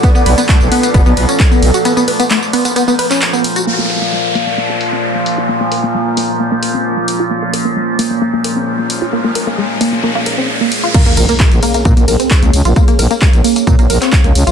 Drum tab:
CC |----------------|----------------|----------------|----------------|
RD |x-x-x-x-x-x-x-x-|x-x-x-x-x-x-x-x-|----------------|----------------|
HH |x-oxx-oxx-oxx-ox|x-oxx-oxx-oxx-ox|--o---o---o---o-|--o---o---o---o-|
TB |xx-xxx-xxx-xxx-x|xx-xxx-xxx-xxx-x|----------------|----------------|
CP |----x-------x---|----x------xx---|----------------|----------------|
BD |o---o---o---o---|----------------|----------------|----------------|

CC |----------------|----------------|x---------------|----------------|
RD |----------------|----------------|--x---x---x---x-|--x---x---x---x-|
HH |--o---o---o---o-|--o---o---o---o-|xxoxxxoxxxoxxxox|xxoxxxoxxxoxxxox|
TB |----------------|----------------|xxxxxxxxxxxxxxxx|xxxxxxxxxxxxxxxx|
CP |----------------|----------------|----x-------x---|----x------xx---|
BD |----------------|----------------|o---o---o---o---|o---o---o---o---|